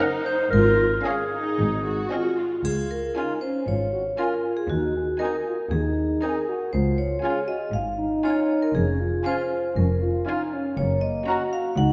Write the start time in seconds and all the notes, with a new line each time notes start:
Already playing: D#4 F#5
0.00 C#4 A#4 A#5
0.25 C5
0.50 G#1 G#2 F4 A#4
1.04 C#4 G#4 F5 G#5
1.31 D#4
1.58 G#1 G#2
1.84 F#4
2.12 C4 F4 D#5 G#5
2.38 F4
2.64 C#2 F4 G#4, triangle
2.91 A#4
3.16 C#4 D#4 F4 G#5
3.41 C#4 C5
3.67 G#1 G#2 F4 C#5
3.93 F#4
4.18 C#4 F4 A#4 G#5
4.57 G#4
4.69 D#2 D#4 F#4
4.96 G#4
5.19 C4 D#4 F#4 A#4 G#5
5.47 F4
5.71 D#2 D#4 G#4
6.22 C4 D#4 G#4 A#4 G#5
6.48 F#4
6.73 C#2 F4 C5
6.98 C#5
7.23 C#4 F4 G#4 G#5
7.47 F#4 D#5
7.73 G#1 G#2 F4 F5
7.98 D#4
8.24 C#4 F4 C#5 G#5
8.62 A#4
8.75 F1 F2 C#4 G#4
9.01 F4
9.25 C#4 F4 C5 G#5
9.76 F1 F2 C#4 A#4
10.03 F4
10.26 C#4 D#4 F4 G#5
10.53 C#4
10.77 F#1 F#2 A#3 C#5
11.01 D#5
11.27 C#4 F#4 A#5
11.53 F5
11.77 C#2 D#4 F#5